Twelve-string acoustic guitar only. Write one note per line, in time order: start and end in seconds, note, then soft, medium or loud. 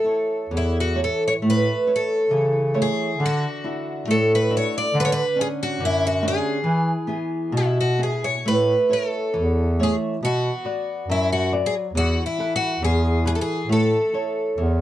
0.00 0.94 A4 medium
0.57 0.77 E4 medium
0.80 1.00 F#4 medium
1.04 1.23 A4 medium
1.28 1.33 C#5 medium
1.50 1.92 B4 medium
1.96 2.81 A4 medium
2.82 3.24 G#4 medium
3.26 4.10 F#4 medium
4.11 4.32 A4 medium
4.35 4.55 B4 medium
4.57 4.75 C#5 medium
4.78 4.98 D5 medium
5.00 5.04 B4 loud
5.05 5.10 C#5 medium
5.12 5.41 B4 loud
5.41 5.47 G#4 loud
5.63 5.84 F#4 medium
5.85 6.05 E4 medium
6.07 6.27 F#4 medium
6.28 7.53 G#4 medium
7.57 7.80 E4 medium
7.81 8.03 F#4 medium
8.03 8.25 G#4 medium
8.24 8.47 C#5 medium
8.48 8.93 B4 medium
8.93 9.83 A4 medium
9.83 9.94 G#4 medium
10.25 11.11 F#4 medium
11.11 11.32 E4 medium
11.32 11.51 F#4 medium
11.66 11.74 G#4 medium
11.97 12.25 F#4 medium
12.26 12.54 E4 medium
12.56 12.83 F#4 medium
12.84 13.23 G#4 medium
13.27 13.30 G#4 medium
13.35 13.40 A4 medium
13.41 13.68 G#4 medium
13.72 14.81 A4 medium